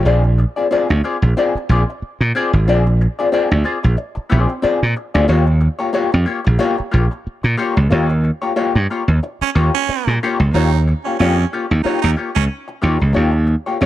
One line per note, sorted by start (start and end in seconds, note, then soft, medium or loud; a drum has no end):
0.05 0.44 A#1 medium
0.05 0.21 C4 medium
0.05 0.21 F4 medium
0.05 0.21 G#4 medium
0.05 0.22 D5 medium
0.23 muted hollow-body jazz guitar stroke soft
0.38 muted hollow-body jazz guitar stroke soft
0.56 0.67 C4 soft
0.56 0.67 F4 soft
0.56 0.67 G#4 medium
0.56 0.66 D5 medium
0.71 0.87 C4 medium
0.71 0.87 F4 medium
0.71 0.87 G#4 medium
0.71 0.87 D5 medium
0.89 1.01 D2 medium
0.89 muted hollow-body jazz guitar stroke soft
1.04 1.16 C4 medium
1.04 1.16 F4 medium
1.04 1.17 G#4 medium
1.04 1.17 D5 medium
1.22 1.33 A#1 medium
1.22 muted hollow-body jazz guitar stroke soft
1.37 1.52 C4 medium
1.37 1.53 F4 medium
1.37 1.53 G#4 medium
1.37 1.53 D5 medium
1.55 muted slap bass stroke soft
1.55 muted hollow-body jazz guitar stroke soft
1.69 1.83 A#1 medium
1.69 1.82 C4 medium
1.69 1.82 F4 medium
1.69 1.83 G#4 medium
1.69 1.83 D5 medium
1.90 muted hollow-body jazz guitar stroke soft
2.02 muted slap bass stroke soft
2.21 2.31 A#2 medium
2.21 muted hollow-body jazz guitar stroke soft
2.35 2.50 C4 medium
2.35 2.51 F4 medium
2.35 2.51 G#4 loud
2.35 2.51 D5 medium
2.53 2.68 G#1 medium
2.53 muted hollow-body jazz guitar stroke soft
2.68 3.06 A#1 medium
2.68 2.83 C4 medium
2.68 2.83 F4 medium
2.68 2.84 G#4 medium
2.68 2.84 D5 loud
2.86 muted hollow-body jazz guitar stroke soft
3.01 muted hollow-body jazz guitar stroke soft
3.19 3.29 C4 soft
3.19 3.29 F4 medium
3.19 3.29 G#4 medium
3.19 3.28 D5 medium
3.32 3.48 C4 medium
3.32 3.48 F4 medium
3.32 3.49 G#4 loud
3.32 3.49 D5 loud
3.50 3.62 D2 medium
3.50 muted hollow-body jazz guitar stroke soft
3.64 3.77 C4 medium
3.64 3.77 F4 medium
3.64 3.78 G#4 medium
3.64 3.78 D5 medium
3.83 3.95 A#1 loud
3.83 muted hollow-body jazz guitar stroke soft
3.97 muted hollow-body jazz guitar stroke medium
4.15 muted hollow-body jazz guitar stroke soft
4.15 muted slap bass stroke soft
4.30 4.45 A#1 medium
4.30 4.52 C4 medium
4.30 4.49 F4 medium
4.30 4.48 G#4 medium
4.30 4.48 D5 medium
4.49 muted hollow-body jazz guitar stroke soft
4.62 4.79 C4 medium
4.62 4.79 F4 medium
4.62 4.79 G#4 medium
4.62 4.79 D5 medium
4.62 muted slap bass stroke soft
4.83 4.93 A#2 medium
4.96 muted hollow-body jazz guitar stroke soft
5.14 5.26 D2 medium
5.14 5.25 C4 medium
5.14 5.25 F4 medium
5.14 5.25 G#4 medium
5.14 5.24 D5 medium
5.28 5.67 D#2 loud
5.28 5.44 A#3 medium
5.28 5.45 F4 medium
5.28 5.45 G4 medium
5.28 5.45 C#5 medium
5.47 muted hollow-body jazz guitar stroke medium
5.61 muted hollow-body jazz guitar stroke soft
5.79 5.90 A#3 medium
5.79 5.90 F4 medium
5.79 5.90 G4 medium
5.79 5.89 C#5 medium
5.93 6.09 A#3 medium
5.93 6.10 F4 loud
5.93 6.10 G4 medium
5.93 6.10 C#5 loud
6.12 6.24 F2 medium
6.12 muted hollow-body jazz guitar stroke soft
6.26 6.39 A#3 medium
6.26 6.39 F4 medium
6.26 6.39 G4 medium
6.26 6.40 C#5 medium
6.44 6.57 A#1 loud
6.44 muted hollow-body jazz guitar stroke medium
6.59 6.75 A#3 loud
6.59 6.75 F4 loud
6.59 6.75 G4 loud
6.59 6.76 C#5 loud
6.77 muted hollow-body jazz guitar stroke soft
6.77 muted slap bass stroke medium
6.91 7.07 A#1 loud
6.91 7.04 A#3 medium
6.91 7.05 F4 medium
6.91 7.05 G4 medium
6.91 7.05 C#5 medium
7.11 muted hollow-body jazz guitar stroke soft
7.27 muted slap bass stroke soft
7.43 7.55 A#2 medium
7.43 muted hollow-body jazz guitar stroke soft
7.57 7.74 A#3 medium
7.57 7.74 F4 medium
7.57 7.74 G4 medium
7.57 7.74 C#5 loud
7.76 7.88 C#2 medium
7.76 muted hollow-body jazz guitar stroke medium
7.90 8.30 D#2 loud
7.90 8.06 A#3 medium
7.90 8.07 F4 medium
7.90 8.07 G4 medium
7.90 8.07 C#5 medium
8.09 muted hollow-body jazz guitar stroke medium
8.24 muted hollow-body jazz guitar stroke soft
8.42 8.52 A#3 soft
8.42 8.52 F4 soft
8.42 8.52 G4 medium
8.42 8.52 C#5 medium
8.56 8.72 A#3 medium
8.56 8.72 F4 medium
8.56 8.72 G4 medium
8.56 8.72 C#5 medium
8.75 8.86 G2 medium
8.75 muted hollow-body jazz guitar stroke soft
8.90 9.02 A#3 medium
8.90 9.02 F4 medium
8.90 9.03 G4 medium
8.90 9.03 C#5 medium
9.08 9.19 D#2 medium
9.08 muted hollow-body jazz guitar stroke soft
9.23 muted hollow-body jazz guitar stroke medium
9.41 9.51 C#4 loud
9.41 muted slap bass stroke soft
9.41 muted hollow-body jazz guitar stroke medium
9.55 9.69 D#2 medium
9.55 9.71 A#3 medium
9.55 9.71 F4 medium
9.55 9.71 G4 medium
9.55 9.71 C#5 medium
9.74 10.14 C#4 loud
9.74 muted hollow-body jazz guitar stroke soft
9.88 muted hollow-body jazz guitar stroke soft
9.88 muted slap bass stroke soft
10.07 10.18 A#2 medium
10.07 muted hollow-body jazz guitar stroke soft
10.23 10.37 A#3 medium
10.23 10.37 F4 medium
10.23 10.38 G4 medium
10.23 10.38 C#5 loud
10.40 10.50 C#2 medium
10.40 muted hollow-body jazz guitar stroke soft
10.54 10.92 D#2 medium
10.54 10.70 A#3 medium
10.54 10.80 D#4 loud
10.54 10.70 F4 medium
10.54 10.70 G4 medium
10.54 10.70 C#5 loud
10.73 muted hollow-body jazz guitar stroke medium
10.87 muted hollow-body jazz guitar stroke soft
11.04 11.16 A#3 soft
11.04 11.16 C#4 medium
11.04 11.15 F4 medium
11.04 11.15 G4 soft
11.04 11.15 C#5 medium
11.19 11.44 F2 medium
11.19 11.35 A#3 medium
11.19 11.45 C#4 loud
11.19 11.36 F4 medium
11.19 11.36 G4 loud
11.19 11.36 C#5 loud
11.38 muted hollow-body jazz guitar stroke soft
11.53 11.65 A#3 medium
11.53 11.65 F4 medium
11.53 11.65 G4 medium
11.53 11.65 C#5 medium
11.70 11.82 D#2 medium
11.70 muted hollow-body jazz guitar stroke soft
11.84 12.00 A#3 medium
11.84 11.99 D#4 medium
11.84 12.01 F4 medium
11.84 12.01 G4 medium
11.84 12.01 C#5 medium
11.84 muted slap bass stroke medium
12.02 12.14 D#2 medium
12.02 12.11 D#4 medium
12.02 muted hollow-body jazz guitar stroke soft
12.16 12.29 A#3 medium
12.16 12.30 F4 medium
12.16 12.30 G4 medium
12.16 12.30 C#5 medium
12.35 12.47 C#2 medium
12.35 12.44 C#4 loud
12.35 muted hollow-body jazz guitar stroke medium
12.68 muted hollow-body jazz guitar stroke medium
12.82 12.97 D#2 medium
12.82 12.98 A#3 medium
12.82 12.98 F4 medium
12.82 12.98 G4 medium
12.82 12.98 C#5 medium
12.99 13.12 C#2 medium
12.99 muted hollow-body jazz guitar stroke medium
13.13 13.54 D#2 medium
13.13 13.30 A#3 medium
13.13 13.31 F4 medium
13.13 13.31 G4 medium
13.13 13.30 C#5 medium
13.31 muted hollow-body jazz guitar stroke soft
13.47 muted hollow-body jazz guitar stroke soft
13.66 13.77 A#3 soft
13.66 13.77 F4 soft
13.66 13.77 G4 medium
13.66 13.76 C#5 medium
13.81 13.86 F2 medium
13.81 13.86 A#3 medium
13.81 13.86 F4 medium
13.81 13.86 G4 loud
13.81 13.86 C#5 medium